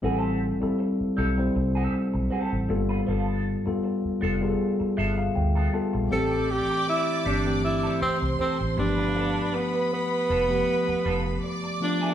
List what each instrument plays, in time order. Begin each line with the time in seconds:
0.02 fingered electric bass A1, tine electric piano G3 C4 E4 A4, clean electric guitar B3 F#4 G#4
0.18 clean electric guitar C4 G4 A4
0.61 tine electric piano G3 C4 E4 A4, muted clean electric guitar stroke, muted fingered electric bass stroke
0.79 muted clean electric guitar stroke
1.01 muted fingered electric bass stroke
1.17 fingered electric bass B1, tine electric piano G3 C4 E4 A4, clean electric guitar C4 G4 A4
1.37 tine electric piano G3 C4 E4 C5, muted clean electric guitar stroke
1.55 fingered electric bass C2, muted clean electric guitar stroke
1.75 clean electric guitar C4 G4 A4
1.93 muted clean electric guitar stroke
2.14 fingered electric bass B1, muted clean electric guitar stroke
2.30 clean electric guitar C4 G4 A4
2.53 fingered electric bass A1
2.68 fingered electric bass G1, tine electric piano G3 A#3 F4 A4, muted clean electric guitar stroke
2.76 tine electric piano B3
2.89 clean electric guitar B3 F4 B4
3.07 fingered electric bass G1, clean electric guitar B3 F4 A4
3.65 tine electric piano G3 B3 F4 A4, muted clean electric guitar stroke, muted fingered electric bass stroke
3.83 muted clean electric guitar stroke
4.05 muted fingered electric bass stroke
4.21 fingered electric bass F1, tine electric piano G3 B3 F4 A4, clean electric guitar B3 F4 A4
4.41 tine electric piano G3 B3 F4 G#4, muted clean electric guitar stroke
4.50 tine electric piano A4
4.80 muted clean electric guitar stroke, muted fingered electric bass stroke
4.97 fingered electric bass G1, clean electric guitar B3 F4 A4, tine electric piano E5
5.18 tine electric piano F5, muted clean electric guitar stroke
5.35 fingered electric bass D2, tine electric piano G5, muted clean electric guitar stroke
5.55 clean electric guitar B3 F4 A4
5.73 tine electric piano G3 B3 F4 A4 A5, muted clean electric guitar stroke
5.93 fingered electric bass A#1, muted clean electric guitar stroke
6.11 fingered electric bass A1, tine electric piano E3 A3 C4 G4, clean electric guitar C4 G4 A4, tenor saxophone A4, string section D5 D6
6.51 tenor saxophone G4
6.70 muted clean electric guitar stroke
6.87 tenor saxophone E4, muted clean electric guitar stroke
7.25 fingered electric bass G1, tine electric piano E3 A3 C4 G4, clean electric guitar C4 G4 A4, tenor saxophone D4
7.45 tine electric piano E3 A3 C4 G4, muted clean electric guitar stroke
7.63 tenor saxophone E4, muted clean electric guitar stroke
7.83 clean electric guitar C4 G4 A4
8.01 tenor saxophone C4, string section C5 C6, muted clean electric guitar stroke, muted fingered electric bass stroke
8.22 fingered electric bass C2, muted clean electric guitar stroke
8.39 clean electric guitar C4 G4 A4, tenor saxophone C4, muted fingered electric bass stroke
8.61 fingered electric bass A1
8.76 fingered electric bass G1, tine electric piano F3 A3 B3 G4, tenor saxophone D4, string section B4 B5, muted clean electric guitar stroke
8.97 clean electric guitar B3 F4 B4
9.15 clean electric guitar B3 F4 A4
9.55 tenor saxophone B3
9.74 muted clean electric guitar stroke
9.91 tenor saxophone B3, muted clean electric guitar stroke
10.29 fingered electric bass F1, clean electric guitar B3 F4 A4
10.48 tine electric piano F3 A3 B3 G4, muted clean electric guitar stroke
10.88 muted clean electric guitar stroke, muted fingered electric bass stroke
11.05 fingered electric bass F1, clean electric guitar B3 F4 A4
11.26 muted clean electric guitar stroke
11.43 string section D5 D6, muted clean electric guitar stroke
11.64 muted clean electric guitar stroke
11.80 tine electric piano F3 A3 B3 F4, tenor saxophone D4
12.01 clean electric guitar B3 F4 A4